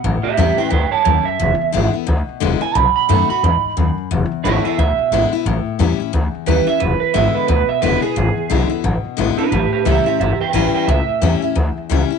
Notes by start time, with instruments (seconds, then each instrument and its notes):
0.04 upright bass A1, steel-string acoustic guitar A2
0.23 clean electric guitar G4 E5, muted upright bass stroke
0.37 upright bass E2, steel-string acoustic guitar E3 G3 C#4 E4, clean electric guitar G4 E5
0.57 steel-string acoustic guitar C#4 E4, clean electric guitar B4 G5, muted upright bass stroke
0.70 upright bass D2, steel-string acoustic guitar G2, clean electric guitar B4 G5
0.91 clean electric guitar C#5 A5, muted upright bass stroke
1.05 upright bass D#2, steel-string acoustic guitar F#2, clean electric guitar C#5 A5
1.25 clean electric guitar E5, muted upright bass stroke
1.39 upright bass E1, steel-string acoustic guitar E2
1.61 muted upright bass stroke
1.72 upright bass G#1, steel-string acoustic guitar D3 G#3 B3 E4
1.94 steel-string acoustic guitar B3 E4, muted upright bass stroke
2.07 upright bass D2, steel-string acoustic guitar B2
2.29 muted upright bass stroke
2.40 upright bass E1, steel-string acoustic guitar D3 G#3 B3 E4
2.61 steel-string acoustic guitar E4, clean electric guitar G#5, muted upright bass stroke
2.75 upright bass B1, steel-string acoustic guitar B2, clean electric guitar B5
2.96 clean electric guitar B5, muted upright bass stroke
3.09 upright bass F#2, steel-string acoustic guitar D#3 A3 B3 F#4
3.30 steel-string acoustic guitar B3 F#4, clean electric guitar B5, muted upright bass stroke
3.43 upright bass E2, steel-string acoustic guitar G#2
3.64 muted upright bass stroke
3.77 upright bass D#2, steel-string acoustic guitar F#2
3.98 muted upright bass stroke
4.11 upright bass E1, steel-string acoustic guitar E2
4.32 muted upright bass stroke
4.44 upright bass G#1, steel-string acoustic guitar D3 G#3 B3 E4, clean electric guitar E4 C#5
4.64 steel-string acoustic guitar B3 E4, clean electric guitar G#4 E5, muted upright bass stroke
4.78 upright bass D2, steel-string acoustic guitar B2, clean electric guitar E5
4.98 muted upright bass stroke
5.11 upright bass G#1, steel-string acoustic guitar D3 G#3 B3 E4
5.32 steel-string acoustic guitar B3 E4, muted upright bass stroke
5.45 upright bass A1, steel-string acoustic guitar A2
5.66 muted upright bass stroke
5.79 upright bass E2, steel-string acoustic guitar E3 G3 C#4 E4
6.00 steel-string acoustic guitar C#4 E4, muted upright bass stroke
6.13 upright bass D2, steel-string acoustic guitar E2
6.35 muted upright bass stroke
6.46 upright bass D#2, steel-string acoustic guitar E3 G3 C#4 E4, clean electric guitar B4
6.67 steel-string acoustic guitar C#4 E4, clean electric guitar E5, muted upright bass stroke
6.80 upright bass E1, steel-string acoustic guitar E2, clean electric guitar B4
7.00 clean electric guitar B4, muted upright bass stroke
7.14 upright bass G#1, steel-string acoustic guitar D3 G#3 B3 E4, clean electric guitar E5
7.35 clean electric guitar B4, muted upright bass stroke
7.48 upright bass D2, steel-string acoustic guitar B2, clean electric guitar B4
7.69 clean electric guitar E5, muted upright bass stroke
7.82 upright bass E1, steel-string acoustic guitar D3 G#3 B3 E4, clean electric guitar B4
8.02 steel-string acoustic guitar B3 E4, clean electric guitar G#4, muted upright bass stroke
8.16 upright bass G#1, steel-string acoustic guitar E2
8.37 muted upright bass stroke
8.50 upright bass B1, steel-string acoustic guitar D3 G#3 B3 E4
8.70 steel-string acoustic guitar B3 E4, muted upright bass stroke
8.84 upright bass A1, steel-string acoustic guitar B2
9.04 muted upright bass stroke
9.17 upright bass G#1, steel-string acoustic guitar D3 G#3 B3 E4
9.38 steel-string acoustic guitar B3 E4, clean electric guitar D4 B4, muted upright bass stroke
9.51 upright bass A1, steel-string acoustic guitar A2, clean electric guitar G4 B4
9.72 clean electric guitar G4 B4, muted upright bass stroke
9.85 upright bass C#2, steel-string acoustic guitar E3 G3 C#4 E4, clean electric guitar G4 E5
10.06 steel-string acoustic guitar C#4 E4, clean electric guitar G4 E5, muted upright bass stroke
10.20 upright bass G1, steel-string acoustic guitar E2, clean electric guitar G4 E5
10.40 clean electric guitar B4 G5, muted upright bass stroke
10.53 upright bass A1, steel-string acoustic guitar E3 G3 C#4 E4, clean electric guitar B4 G5
10.74 clean electric guitar B4 G5, muted upright bass stroke
10.87 upright bass C#2, steel-string acoustic guitar A2, clean electric guitar E5
11.09 muted upright bass stroke
11.22 upright bass E2, steel-string acoustic guitar E3 G3 C#4 E4
11.42 steel-string acoustic guitar C#4 E4, muted upright bass stroke
11.55 upright bass D2, steel-string acoustic guitar E2
11.77 muted upright bass stroke
11.89 upright bass C#2, steel-string acoustic guitar E3 G3 C#4 E4
12.10 steel-string acoustic guitar C#4 E4, muted upright bass stroke